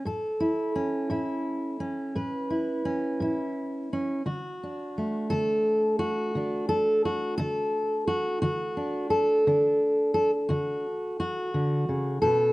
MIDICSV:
0, 0, Header, 1, 2, 480
1, 0, Start_track
1, 0, Tempo, 695249
1, 36, Time_signature, 12, 3, 24, 8
1, 8649, End_track
2, 0, Start_track
2, 0, Title_t, "Steel-string acoustic guitar"
2, 0, Program_c, 0, 25
2, 37, Note_on_c, 0, 45, 67
2, 44, Note_on_c, 0, 69, 63
2, 279, Note_on_c, 0, 64, 56
2, 470, Note_off_c, 0, 45, 0
2, 522, Note_on_c, 0, 61, 56
2, 754, Note_off_c, 0, 64, 0
2, 757, Note_on_c, 0, 45, 73
2, 762, Note_on_c, 0, 64, 60
2, 1191, Note_off_c, 0, 45, 0
2, 1235, Note_off_c, 0, 61, 0
2, 1243, Note_on_c, 0, 61, 56
2, 1487, Note_on_c, 0, 45, 72
2, 1488, Note_off_c, 0, 69, 0
2, 1491, Note_on_c, 0, 71, 58
2, 1720, Note_off_c, 0, 64, 0
2, 1728, Note_on_c, 0, 64, 57
2, 1917, Note_off_c, 0, 45, 0
2, 1961, Note_off_c, 0, 61, 0
2, 1969, Note_on_c, 0, 61, 55
2, 2206, Note_off_c, 0, 64, 0
2, 2211, Note_on_c, 0, 45, 71
2, 2222, Note_on_c, 0, 64, 57
2, 2639, Note_off_c, 0, 45, 0
2, 2687, Note_off_c, 0, 61, 0
2, 2713, Note_on_c, 0, 61, 58
2, 2900, Note_off_c, 0, 71, 0
2, 2905, Note_off_c, 0, 64, 0
2, 2910, Note_off_c, 0, 61, 0
2, 2939, Note_on_c, 0, 50, 69
2, 2943, Note_on_c, 0, 66, 46
2, 3200, Note_on_c, 0, 62, 45
2, 3365, Note_off_c, 0, 50, 0
2, 3437, Note_on_c, 0, 57, 49
2, 3656, Note_off_c, 0, 66, 0
2, 3659, Note_on_c, 0, 69, 97
2, 3673, Note_on_c, 0, 50, 73
2, 4091, Note_off_c, 0, 50, 0
2, 4132, Note_off_c, 0, 69, 0
2, 4135, Note_on_c, 0, 66, 93
2, 4384, Note_on_c, 0, 50, 68
2, 4393, Note_off_c, 0, 62, 0
2, 4396, Note_on_c, 0, 62, 46
2, 4611, Note_off_c, 0, 66, 0
2, 4617, Note_on_c, 0, 69, 96
2, 4807, Note_off_c, 0, 50, 0
2, 4851, Note_off_c, 0, 69, 0
2, 4869, Note_on_c, 0, 66, 77
2, 5089, Note_off_c, 0, 66, 0
2, 5092, Note_on_c, 0, 69, 94
2, 5105, Note_on_c, 0, 50, 70
2, 5527, Note_off_c, 0, 50, 0
2, 5569, Note_off_c, 0, 69, 0
2, 5575, Note_on_c, 0, 66, 85
2, 5792, Note_off_c, 0, 62, 0
2, 5803, Note_off_c, 0, 66, 0
2, 5812, Note_on_c, 0, 66, 90
2, 5817, Note_on_c, 0, 50, 71
2, 6054, Note_on_c, 0, 62, 45
2, 6242, Note_off_c, 0, 50, 0
2, 6281, Note_off_c, 0, 66, 0
2, 6284, Note_on_c, 0, 69, 83
2, 6529, Note_off_c, 0, 62, 0
2, 6538, Note_on_c, 0, 50, 73
2, 6542, Note_on_c, 0, 62, 49
2, 6962, Note_off_c, 0, 50, 0
2, 6993, Note_off_c, 0, 69, 0
2, 7002, Note_on_c, 0, 69, 82
2, 7112, Note_off_c, 0, 69, 0
2, 7241, Note_on_c, 0, 66, 79
2, 7249, Note_on_c, 0, 50, 75
2, 7490, Note_off_c, 0, 62, 0
2, 7676, Note_off_c, 0, 50, 0
2, 7720, Note_off_c, 0, 66, 0
2, 7731, Note_on_c, 0, 66, 75
2, 7968, Note_on_c, 0, 50, 63
2, 8203, Note_off_c, 0, 50, 0
2, 8208, Note_on_c, 0, 49, 59
2, 8432, Note_off_c, 0, 66, 0
2, 8434, Note_on_c, 0, 69, 82
2, 8440, Note_off_c, 0, 49, 0
2, 8443, Note_on_c, 0, 47, 65
2, 8649, Note_off_c, 0, 47, 0
2, 8649, Note_off_c, 0, 57, 0
2, 8649, Note_off_c, 0, 69, 0
2, 8649, End_track
0, 0, End_of_file